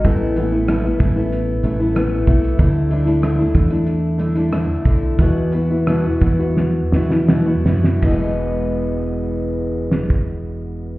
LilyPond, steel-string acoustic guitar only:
\new Staff \with { instrumentName = "Steel-string acoustic guitar" } { \time 4/4 \key e \major \tempo 4 = 89 <a, e a b e'>8 <e a b e'>16 <a b e'>16 <a, e a b e'>16 <a b e'>16 <e a b e'>16 <a b e'>8. <e a b e'>16 <a b e'>16 <a, e a b e'>8 <e a b e'>8 | <d a d' e'>8 <d a d' e'>16 <a d' e'>16 <d a d' e'>16 <a d' e'>16 <d a d' e'>16 <a d' e'>8. <d a d' e'>16 <a d' e'>16 <d a d' e'>8 <d a d' e'>8 | <e, b, e b e' fis'>8 <e b e' fis'>16 <e b e' fis'>16 <e, b, e b e' fis'>16 <e b e' fis'>16 <e b e' fis'>16 <e b e' fis'>8. <e b e' fis'>16 <e b e' fis'>16 <e, b, e b e' fis'>16 <e b e' fis'>16 <e b e' fis'>8 | <e, b, e gis b gis'>1 | }